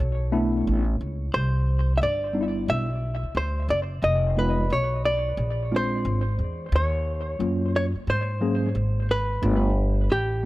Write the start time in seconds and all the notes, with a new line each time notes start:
Already playing: C#5
0.00 B1
0.32 A3 B3 D4 E4
0.67 A1
1.01 C#2
1.34 C2 C5
1.98 E5
2.02 G1 D5
2.33 G3 B3 D4 D#4
2.41 E4
2.68 B1 E5
3.23 muted upright bass stroke
3.35 D2 C5
3.69 F#1 D5
4.02 F1 D#5
4.36 G#3 B3 D#4 F4 B4
4.70 B1 C#5
5.05 D5
5.37 A#1
5.71 G#3 C4 D4 F4
5.76 C5
6.05 G#1
6.39 E2
6.72 D#2 C#5
7.39 F#2 F#3 A#3 C#4 F4
7.76 C#5
7.95 muted upright bass stroke
8.07 G#2 C5
8.41 F#3 A#3 C#4 G#4
8.75 G#1
9.11 B4
9.42 G1 A3 B3 D4 F4
10.10 A1 G4